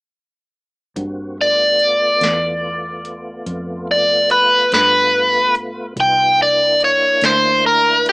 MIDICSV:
0, 0, Header, 1, 5, 480
1, 0, Start_track
1, 0, Tempo, 835655
1, 554, Time_signature, 12, 3, 24, 8
1, 4665, End_track
2, 0, Start_track
2, 0, Title_t, "Overdriven electric guitar"
2, 0, Program_c, 0, 29
2, 812, Note_on_c, 0, 74, 73
2, 2220, Note_off_c, 0, 74, 0
2, 2248, Note_on_c, 0, 74, 67
2, 2473, Note_off_c, 0, 74, 0
2, 2477, Note_on_c, 0, 71, 63
2, 2708, Note_off_c, 0, 71, 0
2, 2721, Note_on_c, 0, 71, 72
2, 3182, Note_off_c, 0, 71, 0
2, 3448, Note_on_c, 0, 79, 76
2, 3673, Note_off_c, 0, 79, 0
2, 3690, Note_on_c, 0, 74, 69
2, 3914, Note_off_c, 0, 74, 0
2, 3931, Note_on_c, 0, 73, 63
2, 4154, Note_off_c, 0, 73, 0
2, 4168, Note_on_c, 0, 72, 63
2, 4392, Note_off_c, 0, 72, 0
2, 4402, Note_on_c, 0, 70, 63
2, 4629, Note_off_c, 0, 70, 0
2, 4647, Note_on_c, 0, 67, 62
2, 4665, Note_off_c, 0, 67, 0
2, 4665, End_track
3, 0, Start_track
3, 0, Title_t, "Tonewheel organ"
3, 0, Program_c, 1, 16
3, 549, Note_on_c, 1, 58, 46
3, 549, Note_on_c, 1, 60, 46
3, 551, Note_on_c, 1, 66, 50
3, 789, Note_on_c, 1, 57, 56
3, 791, Note_off_c, 1, 58, 0
3, 791, Note_off_c, 1, 60, 0
3, 792, Note_off_c, 1, 66, 0
3, 793, Note_on_c, 1, 59, 56
3, 796, Note_on_c, 1, 65, 58
3, 3407, Note_off_c, 1, 57, 0
3, 3409, Note_off_c, 1, 59, 0
3, 3411, Note_off_c, 1, 65, 0
3, 3443, Note_on_c, 1, 59, 54
3, 3443, Note_on_c, 1, 65, 52
3, 3447, Note_on_c, 1, 63, 53
3, 3677, Note_off_c, 1, 59, 0
3, 3678, Note_off_c, 1, 65, 0
3, 3679, Note_on_c, 1, 62, 57
3, 3680, Note_off_c, 1, 63, 0
3, 3684, Note_on_c, 1, 64, 52
3, 3686, Note_on_c, 1, 58, 52
3, 4665, Note_off_c, 1, 58, 0
3, 4665, Note_off_c, 1, 62, 0
3, 4665, Note_off_c, 1, 64, 0
3, 4665, End_track
4, 0, Start_track
4, 0, Title_t, "Fingered electric bass"
4, 0, Program_c, 2, 33
4, 555, Note_on_c, 2, 43, 64
4, 1253, Note_off_c, 2, 43, 0
4, 1270, Note_on_c, 2, 40, 73
4, 1970, Note_off_c, 2, 40, 0
4, 1990, Note_on_c, 2, 41, 69
4, 2690, Note_off_c, 2, 41, 0
4, 2714, Note_on_c, 2, 43, 74
4, 3411, Note_off_c, 2, 43, 0
4, 3424, Note_on_c, 2, 36, 66
4, 4125, Note_off_c, 2, 36, 0
4, 4148, Note_on_c, 2, 38, 76
4, 4665, Note_off_c, 2, 38, 0
4, 4665, End_track
5, 0, Start_track
5, 0, Title_t, "Drums"
5, 553, Note_on_c, 9, 36, 87
5, 554, Note_on_c, 9, 42, 63
5, 610, Note_off_c, 9, 36, 0
5, 611, Note_off_c, 9, 42, 0
5, 1030, Note_on_c, 9, 42, 48
5, 1088, Note_off_c, 9, 42, 0
5, 1271, Note_on_c, 9, 42, 71
5, 1284, Note_on_c, 9, 38, 89
5, 1328, Note_off_c, 9, 42, 0
5, 1341, Note_off_c, 9, 38, 0
5, 1751, Note_on_c, 9, 42, 50
5, 1809, Note_off_c, 9, 42, 0
5, 1990, Note_on_c, 9, 42, 65
5, 1991, Note_on_c, 9, 36, 63
5, 2048, Note_off_c, 9, 36, 0
5, 2048, Note_off_c, 9, 42, 0
5, 2469, Note_on_c, 9, 42, 53
5, 2527, Note_off_c, 9, 42, 0
5, 2711, Note_on_c, 9, 42, 72
5, 2724, Note_on_c, 9, 38, 94
5, 2768, Note_off_c, 9, 42, 0
5, 2781, Note_off_c, 9, 38, 0
5, 3188, Note_on_c, 9, 42, 50
5, 3246, Note_off_c, 9, 42, 0
5, 3427, Note_on_c, 9, 36, 90
5, 3428, Note_on_c, 9, 42, 68
5, 3485, Note_off_c, 9, 36, 0
5, 3485, Note_off_c, 9, 42, 0
5, 3908, Note_on_c, 9, 42, 45
5, 3966, Note_off_c, 9, 42, 0
5, 4144, Note_on_c, 9, 42, 68
5, 4157, Note_on_c, 9, 38, 91
5, 4201, Note_off_c, 9, 42, 0
5, 4214, Note_off_c, 9, 38, 0
5, 4629, Note_on_c, 9, 42, 50
5, 4665, Note_off_c, 9, 42, 0
5, 4665, End_track
0, 0, End_of_file